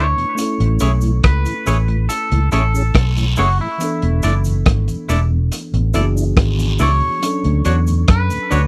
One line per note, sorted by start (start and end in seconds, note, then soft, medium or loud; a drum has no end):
0.00 0.13 D2 medium
0.00 0.33 A3 medium
0.00 0.34 D4 medium
0.00 0.35 E4 medium
0.00 0.36 B4 medium
0.00 1.20 C#5 loud
0.17 0.25 E2 medium
0.17 0.25 B2 medium
0.17 closed hi-hat soft
0.35 3.75 A3 medium
0.35 3.76 C#4 medium
0.35 3.77 E4 medium
0.35 closed hi-hat medium
0.35 cabasa medium
0.41 3.78 A4 medium
0.60 0.79 A1 medium
0.60 0.68 A2 medium
0.60 0.69 E3 medium
0.60 closed hi-hat medium
0.79 1.21 B1 medium
0.79 0.90 A3 medium
0.79 0.90 C#4 medium
0.79 0.91 E4 medium
0.79 0.90 G#4 medium
0.79 0.91 G#4 loud
0.79 0.91 C#5 medium
0.79 closed hi-hat medium
0.79 cabasa medium
1.01 1.11 A2 medium
1.01 1.11 E3 medium
1.01 closed hi-hat soft
1.01 cabasa medium
1.23 1.44 C#2 medium
1.23 2.08 B4 medium
1.23 kick loud
1.23 cross-stick loud
1.23 closed hi-hat medium
1.45 1.54 A2 medium
1.45 1.54 E3 medium
1.45 closed hi-hat medium
1.45 cabasa medium
1.66 2.06 A1 medium
1.66 1.75 A3 medium
1.66 1.75 C#4 medium
1.66 1.76 E4 medium
1.66 1.76 G#4 medium
1.66 1.77 G#4 medium
1.66 1.77 C#5 loud
1.66 closed hi-hat medium
1.66 cabasa medium
1.88 1.97 A2 medium
1.88 1.97 E3 medium
1.88 muted clean electric guitar stroke soft
1.88 closed hi-hat soft
2.09 2.51 A4 medium
2.09 closed hi-hat medium
2.09 cabasa medium
2.31 2.51 C#2 medium
2.31 2.40 A2 medium
2.31 2.40 E3 medium
2.31 closed hi-hat medium
2.52 2.92 A1 medium
2.52 2.61 A3 medium
2.52 2.61 C#4 medium
2.52 2.62 E4 medium
2.52 2.61 G#4 medium
2.52 2.62 G#4 loud
2.52 3.40 A4 medium
2.52 2.63 C#5 medium
2.52 closed hi-hat medium
2.52 cabasa soft
2.74 2.83 C#4 medium
2.74 2.83 G#4 medium
2.74 cabasa medium
2.94 3.34 B1 medium
2.94 kick loud
2.94 cross-stick loud
2.94 closed hi-hat loud
2.94 long guiro medium
3.17 3.25 A2 medium
3.17 3.25 E3 medium
3.17 closed hi-hat medium
3.17 cabasa soft
3.36 3.58 F#1 medium
3.36 3.47 A3 medium
3.36 3.47 C#4 medium
3.36 3.47 E4 medium
3.36 3.61 F#4 medium
3.36 3.48 G#4 loud
3.36 3.47 G#4 medium
3.36 3.48 C#5 loud
3.36 open hi-hat medium
3.36 cabasa medium
3.60 3.68 A2 medium
3.60 3.68 E3 medium
3.60 4.42 E4 medium
3.78 5.89 E3 medium
3.78 5.90 B3 medium
3.78 5.91 D4 medium
3.78 closed hi-hat medium
3.78 cabasa medium
3.84 5.92 A4 medium
4.02 4.22 E1 medium
4.02 4.11 E2 medium
4.02 4.11 B2 medium
4.02 closed hi-hat soft
4.23 4.63 F#1 medium
4.23 4.33 A3 medium
4.23 4.33 D4 medium
4.23 4.33 E4 medium
4.23 4.33 A4 medium
4.23 4.34 D5 loud
4.23 closed hi-hat medium
4.23 cabasa medium
4.44 4.54 E2 medium
4.44 4.54 B2 medium
4.44 closed hi-hat soft
4.44 cabasa medium
4.66 4.86 G#1 medium
4.66 kick loud
4.66 cross-stick loud
4.66 closed hi-hat loud
4.88 4.97 E2 medium
4.88 4.97 B2 medium
4.88 closed hi-hat medium
4.88 cabasa soft
5.09 5.48 E1 loud
5.09 5.18 A3 medium
5.09 5.18 D4 medium
5.09 5.19 E4 medium
5.09 5.18 E4 medium
5.09 5.19 A4 medium
5.09 5.19 D5 medium
5.09 closed hi-hat medium
5.09 cabasa medium
5.30 5.39 E2 medium
5.30 5.39 B2 medium
5.52 closed hi-hat medium
5.52 cabasa medium
5.74 5.93 A1 loud
5.74 5.82 E2 medium
5.74 5.82 B2 medium
5.74 closed hi-hat medium
5.94 6.34 F#1 medium
5.94 7.22 E3 medium
5.94 6.03 A3 medium
5.94 7.23 B3 medium
5.94 6.03 D4 medium
5.94 7.23 D4 medium
5.94 6.03 E4 medium
5.94 6.04 E4 medium
5.94 6.02 F#4 medium
5.94 6.05 A4 medium
5.94 6.05 D5 medium
5.94 closed hi-hat medium
5.94 cabasa medium
6.03 7.27 G#4 medium
6.15 6.24 D4 medium
6.15 6.25 E4 medium
6.15 cabasa medium
6.37 6.76 G#1 medium
6.37 kick loud
6.37 cross-stick loud
6.37 closed hi-hat loud
6.37 long guiro medium
6.58 6.67 E2 medium
6.58 6.67 B2 medium
6.58 closed hi-hat medium
6.58 cabasa medium
6.79 7.00 C#2 medium
6.79 6.88 A3 medium
6.79 6.88 D4 medium
6.79 6.90 E4 loud
6.79 6.89 E4 medium
6.79 6.90 A4 loud
6.79 8.05 C#5 loud
6.79 6.90 D5 loud
6.79 open hi-hat medium
6.79 cabasa medium
7.01 7.10 E2 medium
7.01 7.10 B2 medium
7.20 8.67 F#3 medium
7.20 8.67 C#4 medium
7.20 8.67 D4 medium
7.20 closed hi-hat loud
7.20 cabasa medium
7.26 8.67 A4 medium
7.44 7.53 D2 medium
7.44 7.64 D2 medium
7.44 7.53 A2 medium
7.44 closed hi-hat soft
7.65 8.05 E2 medium
7.65 7.74 C#4 medium
7.65 7.74 D4 medium
7.65 7.75 D4 medium
7.65 7.74 F#4 medium
7.65 7.75 F#4 medium
7.65 7.76 C#5 medium
7.65 closed hi-hat medium
7.65 cabasa medium
7.87 7.96 D2 medium
7.87 7.96 A2 medium
7.87 closed hi-hat soft
7.87 cabasa medium
8.08 8.29 F#2 loud
8.08 8.67 B4 loud
8.08 kick loud
8.08 cross-stick loud
8.08 closed hi-hat medium
8.30 8.39 D2 medium
8.30 8.39 A2 medium
8.30 closed hi-hat medium
8.30 cabasa soft
8.50 8.67 D2 medium
8.50 8.60 C#4 medium
8.50 8.60 D4 medium
8.50 8.61 D4 loud
8.50 8.60 F#4 medium
8.50 8.61 F#4 medium
8.50 8.61 C#5 medium
8.50 closed hi-hat medium
8.50 cabasa medium